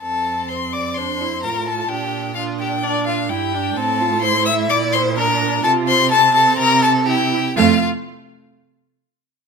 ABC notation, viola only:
X:1
M:4/4
L:1/8
Q:1/4=128
K:F
V:1 name="Viola"
C4 D E F2 | D2 D4 E D | C F E4 D2 | F2 C4 E z |
A, z6 z |]